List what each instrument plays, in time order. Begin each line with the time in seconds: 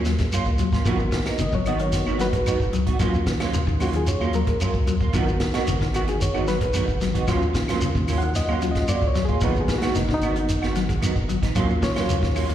Already playing: analog synth bass D#2, reed electric piano A#4 D#5
0.05 clean electric guitar F#3, muted clean electric guitar stroke, snare, closed hi-hat, shekere
0.18 clean electric guitar G#3, kick, snare, closed hi-hat, shekere
0.32 analog synth bass D#2, clean electric guitar A#3 C#4 F4, muted clean electric guitar stroke, closed hi-hat, claves, shekere
0.46 analog synth bass C#2, muted clean electric guitar stroke, kick, shekere
0.58 analog synth bass D#2, clean electric guitar F#3, muted clean electric guitar stroke, closed hi-hat, shekere
0.73 clean electric guitar A#3 C#4 F4, kick, snare, shekere
0.85 analog synth bass G#1, clean electric guitar D#3 F3 B3 D#4 F#4, reed electric piano B3 F#4 A#4, kick, closed hi-hat, claves, shekere
0.99 muted clean electric guitar stroke, shekere
1.12 clean electric guitar D#3, muted clean electric guitar stroke, kick, snare, closed hi-hat, shekere
1.26 clean electric guitar D#4, muted clean electric guitar stroke, snare, closed hi-hat, claves, shekere
1.38 analog synth bass G#1, clean electric guitar C#3, reed electric piano D#5, closed hi-hat, shekere
1.52 analog synth bass G#1, clean electric guitar F#3, reed electric piano C#5, muted clean electric guitar stroke, kick, shekere
1.66 clean electric guitar D#3 B3 D#4 F#4, reed electric piano D#5, closed hi-hat, claves, shekere
1.79 clean electric guitar D#3, reed electric piano C#5, muted clean electric guitar stroke, closed hi-hat, shekere
1.92 reed electric piano A#3 B3 F#4, muted clean electric guitar stroke, snare, closed hi-hat, shekere
2.07 analog synth bass G#1, clean electric guitar D#3 B3 D#4 F#4, claves, shekere
2.19 clean electric guitar F#3, reed electric piano F#4 B4, muted clean electric guitar stroke, snare, closed hi-hat, shekere
2.33 clean electric guitar G#3, kick, closed hi-hat, shekere
2.46 analog synth bass G#1, clean electric guitar D#3 B3 D#4 F#4, closed hi-hat, claves, shekere
2.60 analog synth bass F#1, muted clean electric guitar stroke, kick, shekere
2.73 analog synth bass C#2, clean electric guitar F#3, muted clean electric guitar stroke, closed hi-hat, shekere
2.86 clean electric guitar B3 D#4 F#4, kick, closed hi-hat, shekere
2.99 analog synth bass D#2, clean electric guitar F3 F#3 A#3 C#4 F4, reed electric piano F#3 C#4 F4, kick, closed hi-hat, claves, shekere
3.14 muted clean electric guitar stroke, shekere
3.26 clean electric guitar D#3, muted clean electric guitar stroke, kick, snare, closed hi-hat, shekere
3.40 clean electric guitar F#3 A#3 C#4 F4, snare, closed hi-hat, claves, shekere
3.53 analog synth bass D#2, clean electric guitar C#3, closed hi-hat, shekere
3.67 analog synth bass D#2, clean electric guitar D#3, muted clean electric guitar stroke, kick, shekere
3.80 clean electric guitar F#3 A#3 C#4 F4, reed electric piano F#3 C#4 F4 F#4, open hi-hat, claves, shekere
3.93 clean electric guitar D#3, reed electric piano G#4, muted clean electric guitar stroke, closed hi-hat, shekere
4.06 reed electric piano C#5, muted clean electric guitar stroke, closed hi-hat, shekere
4.21 analog synth bass D#2, clean electric guitar F#3 A#3 C#4 F4, claves, shekere
4.33 clean electric guitar F#3, reed electric piano A#4, muted clean electric guitar stroke, closed hi-hat, shekere
4.47 clean electric guitar G#3, kick, closed hi-hat, shekere
4.60 analog synth bass D#2, clean electric guitar F#3 C#4 F4, muted clean electric guitar stroke, closed hi-hat, claves, shekere
4.74 analog synth bass C#2, muted clean electric guitar stroke, kick, shekere
4.86 analog synth bass D#2, clean electric guitar F#3, muted clean electric guitar stroke, closed hi-hat, shekere
5.01 clean electric guitar A#3 F4, kick, shekere
5.13 analog synth bass G#1, clean electric guitar D#3 F3 B3 D#4 F#4, reed electric piano B3 F#4 A#4, kick, closed hi-hat, claves, shekere
5.27 muted clean electric guitar stroke, shekere
5.40 clean electric guitar D#3, muted clean electric guitar stroke, kick, snare, closed hi-hat, shekere
5.54 clean electric guitar D#3 B3 D#4 F#4, snare, closed hi-hat, claves, shekere
5.67 analog synth bass G#1, clean electric guitar C#3, closed hi-hat, shekere
5.80 analog synth bass G#1, clean electric guitar D#3, muted clean electric guitar stroke, kick, snare, shekere
5.93 clean electric guitar D#3 B3 D#4 F#4, reed electric piano F#4, closed hi-hat, claves, shekere
6.07 clean electric guitar D#3, reed electric piano G#4, muted clean electric guitar stroke, closed hi-hat, shekere
6.20 reed electric piano C#5, muted clean electric guitar stroke, closed hi-hat, shekere
6.34 analog synth bass G#1, clean electric guitar D#3 B3 D#4 F#4, claves, shekere
6.47 clean electric guitar F#3, reed electric piano B4, muted clean electric guitar stroke, snare, closed hi-hat, shekere
6.61 clean electric guitar G#3, kick, closed hi-hat, shekere
6.73 analog synth bass G#1, clean electric guitar D#3 B3 D#4 F#4, closed hi-hat, claves, shekere
6.88 analog synth bass F#1, muted clean electric guitar stroke, kick, shekere
7.00 analog synth bass G#1, clean electric guitar F#3, muted clean electric guitar stroke, snare, closed hi-hat, shekere
7.14 clean electric guitar B3 D#4 F#4, kick, closed hi-hat, shekere
7.27 analog synth bass D#2, clean electric guitar F3 F#3 A#3 C#4 F4, reed electric piano F#3 C#4 F4, kick, snare, closed hi-hat, claves, shekere
7.42 muted clean electric guitar stroke, shekere
7.55 clean electric guitar D#3, muted clean electric guitar stroke, kick, snare, closed hi-hat, shekere
7.68 clean electric guitar F#3 A#3 C#4 F4, snare, closed hi-hat, claves, shekere
7.80 analog synth bass D#2, clean electric guitar C#3, closed hi-hat, shekere
7.95 analog synth bass D#2, clean electric guitar D#3, muted clean electric guitar stroke, kick, shekere
8.08 clean electric guitar F#3 A#3 C#4 F4, open hi-hat, claves, shekere
8.18 reed electric piano F#5, closed hi-hat, shekere
8.22 clean electric guitar D#3, muted clean electric guitar stroke
8.35 reed electric piano D#5, muted clean electric guitar stroke, snare, closed hi-hat, shekere
8.48 analog synth bass D#2, clean electric guitar F#3 A#3 C#4 F4, claves, shekere
8.53 reed electric piano F#5
8.61 reed electric piano F#3 C#4 F4, clean electric guitar F#3, muted clean electric guitar stroke, closed hi-hat, shekere
8.71 reed electric piano D#5, kick
8.75 clean electric guitar G#3, snare, closed hi-hat, shekere
8.88 analog synth bass D#2, clean electric guitar F#3 A#3 F4, reed electric piano D5, closed hi-hat, claves, shekere
9.02 analog synth bass C#2, muted clean electric guitar stroke, kick, shekere
9.08 reed electric piano C#5
9.15 analog synth bass D#2, clean electric guitar F#3, muted clean electric guitar stroke, snare, closed hi-hat, shekere
9.25 clean electric guitar F4, reed electric piano G#4, kick, shekere
9.29 clean electric guitar A#3 C#4
9.41 analog synth bass G#1, clean electric guitar D#3 F3 B3 D#4 F#4, reed electric piano A#3 B3 F#4 B4, kick, closed hi-hat, claves, shekere
9.55 muted clean electric guitar stroke, shekere
9.61 reed electric piano G#4
9.68 clean electric guitar D#3, muted clean electric guitar stroke, kick, snare, closed hi-hat, shekere
9.78 reed electric piano F#4, snare, closed hi-hat
9.82 clean electric guitar D#3 B3 D#4 F#4, claves, shekere
9.95 analog synth bass G#1, clean electric guitar C#3, reed electric piano D#4, snare, closed hi-hat, shekere
10.09 analog synth bass G#1, clean electric guitar D#3, reed electric piano D4, muted clean electric guitar stroke, kick, snare, shekere
10.14 reed electric piano D#4
10.21 clean electric guitar D#3 B3 F#4, muted clean electric guitar stroke, closed hi-hat, claves, shekere
10.36 clean electric guitar D#3, muted clean electric guitar stroke, closed hi-hat, shekere
10.49 muted clean electric guitar stroke, closed hi-hat, shekere
10.62 analog synth bass G#1, clean electric guitar D#3 B3 F#4, muted clean electric guitar stroke, snare, claves, shekere
10.75 clean electric guitar F#3, muted clean electric guitar stroke, snare, closed hi-hat, shekere
10.89 clean electric guitar G#3, kick, closed hi-hat, shekere
11.01 analog synth bass G#1, clean electric guitar D#3 B3 D#4 F#4, closed hi-hat, claves, shekere
11.15 analog synth bass F#1, muted clean electric guitar stroke, kick, shekere
11.28 analog synth bass G#1, clean electric guitar F#3, muted clean electric guitar stroke, closed hi-hat, shekere
11.42 clean electric guitar B3 D#4, muted clean electric guitar stroke, kick, snare, closed hi-hat, shekere
11.55 analog synth bass D#2, clean electric guitar F3 F#3 A#3 C#4 F4, reed electric piano F#3 C#4 F4, kick, closed hi-hat, claves, shekere
11.69 muted clean electric guitar stroke, shekere
11.82 clean electric guitar D#3, reed electric piano C#5, muted clean electric guitar stroke, kick, snare, closed hi-hat, shekere
11.96 clean electric guitar F#3 A#3 C#4 F4, snare, closed hi-hat, claves, shekere
12.09 analog synth bass D#2, clean electric guitar C#3, closed hi-hat, shekere
12.23 analog synth bass D#2, clean electric guitar D#3, muted clean electric guitar stroke, kick, snare, shekere
12.35 clean electric guitar F#3 A#3 C#4 F4, open hi-hat, claves, shekere
12.49 clean electric guitar D#3, muted clean electric guitar stroke, closed hi-hat, shekere